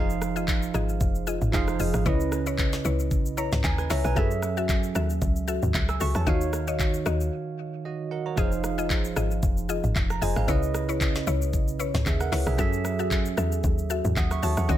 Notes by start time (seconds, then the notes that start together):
Already playing: F1 F3 D#4 F4 G#4 C5 D#5 F5
0.10 shaker
0.22 cross-stick, shaker
0.36 F4 G#4 D#5, shaker
0.48 kick, clap, shaker
0.63 shaker
0.74 G#1 F4 G#4 D#5, cross-stick, shaker
0.89 shaker
1.01 F1, kick, shaker
1.15 shaker
1.27 F4 G#4 D#5, shaker
1.41 G#1, mid tom, shaker
1.52 F1 F3 D#4 G#4 C5 F5, kick, clap, shaker
1.68 cross-stick, shaker
1.79 F1 F4 G#4 D#5, open hi-hat, shaker
1.94 G#1, cross-stick, shaker
2.05 C#2 C#3 C#4 E4 B4 C#5 D#5, kick, shaker
2.20 shaker
2.32 cross-stick, shaker
2.46 E4 B4 C#5, shaker
2.58 kick, clap, shaker
2.73 snare, shaker
2.85 C#2 E4 B4 C#5, shaker
2.99 shaker
3.11 B1, kick, shaker
3.26 shaker
3.37 E4 B4 C#5 A#5, shaker
3.52 C#2, snare, mid tom, shaker
3.64 D#2 G#5, kick, clap, shaker
3.78 B4 G#5, cross-stick, shaker
3.90 C#2 E4 B4 C#5 E5 A#5, cross-stick, snare, open hi-hat, shaker
4.05 B1 B4 G#5, cross-stick, shaker
4.15 F#2 F#3 C#4 F#4 G#4 A4 E5, kick, shaker
4.31 shaker
4.42 cross-stick, shaker
4.57 F#4 A4 E5, shaker
4.69 kick, clap, shaker
4.83 shaker
4.95 D#2 F#4 A4 E5, cross-stick, shaker
5.10 shaker
5.22 C#2, kick, shaker
5.36 shaker
5.48 F#4 A4 E5, shaker
5.63 D#2, mid tom, shaker
5.74 C#2, kick, clap, shaker
5.89 G#5 E6, cross-stick, shaker
6.00 C#2 F#4 A4 E5 C#6, open hi-hat, shaker
6.15 E2 C#5 A5, cross-stick, shaker
6.26 D#2 D#3 D#4 F4 F#4 C#5 D#5 F5, kick, shaker
6.34 F#4
6.41 shaker
6.53 cross-stick, shaker
6.67 F#4 C#5 D#5, shaker
6.79 kick, clap, shaker
6.94 shaker
7.06 D#2 F#4 C#5 D#5, cross-stick, shaker
7.21 shaker
7.85 F#4 D#5
8.11 A#4 F#5
8.26 C#5 A#5
8.36 F1 F3 D#4 F4 G#4 C5 D#5 F5, kick, shaker
8.52 shaker
8.64 cross-stick, shaker
8.78 F4 G#4 D#5, shaker
8.90 kick, clap, shaker
9.05 shaker
9.16 G#1 F4 G#4 D#5, cross-stick, shaker
9.31 shaker
9.43 F1, kick, shaker
9.57 shaker
9.69 F4 G#4 D#5, shaker
9.84 G#1, mid tom, shaker
9.96 F1, kick, clap, shaker
10.10 A#5, cross-stick, shaker
10.21 F1 F4 G#4 C5 D#5 G#5, open hi-hat, shaker
10.36 G#1 G#4 F5, cross-stick, shaker
10.47 C#2 C#3 C#4 E4 B4 C#5 D#5, kick, shaker
10.63 shaker
10.74 cross-stick, shaker
10.89 E4 B4 C#5, shaker
11.01 kick, clap, shaker
11.15 snare, shaker
11.27 C#2 E4 B4 C#5, shaker
11.42 shaker
11.53 B1, kick, shaker
11.68 shaker
11.79 E4 B4 C#5, shaker
11.94 C#2, snare, mid tom, shaker
12.06 D#2 G#4 E5, kick, clap, shaker
12.21 A#4 F#5, cross-stick, shaker
12.32 C#2 E4 B4 C#5, cross-stick, snare, open hi-hat, shaker
12.47 B1 G#4 E5, cross-stick, shaker
12.57 F#2 F#3 C#4 F#4 G#4 A4 E5, kick, shaker
12.73 shaker
12.85 cross-stick, shaker
12.99 F#4 A4 E5, shaker
13.11 kick, clap, shaker
13.26 shaker
13.37 E2 F#4 A4 E5, cross-stick, shaker
13.52 shaker
13.64 D#2, kick, shaker
13.78 shaker
13.90 F#4 A4 E5, shaker
14.05 E2, mid tom, shaker
14.16 D#2 F#5 D#6, kick, clap, shaker
14.31 E5 C#6, cross-stick, shaker
14.43 D#2 F#4 A4 C#5 E5 A5, open hi-hat, shaker
14.57 E2 A4 F#5, cross-stick, shaker
14.68 D#2 D#3 C#4 F4 F#4 C#5 D#5, kick, shaker